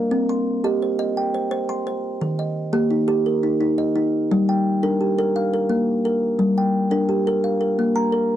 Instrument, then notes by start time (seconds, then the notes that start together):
kalimba
Already playing: A#4 F5
0.11 C4
0.29 C6
0.64 G4 D#5
0.82 C5
0.99 D#5
1.17 G5
1.34 C5
1.51 C5
1.69 C6
1.87 C5
2.21 D#3
2.39 D#5
2.73 A#3 G4
2.91 D#4
3.08 G4
3.26 A#4
3.43 D#4
3.61 D#4
3.78 D#5
3.96 D#4
4.31 G3
4.49 G5
4.83 D4 A#4
5.01 G4
5.19 A#4
5.36 F5
5.54 A#4
5.69 A#3
6.05 A#4
6.39 G3
6.58 G5
6.91 D4 A#4
7.09 G4
7.27 A#4
7.44 F5
7.61 A#4
7.79 A#3
7.96 A#5
8.12 A#4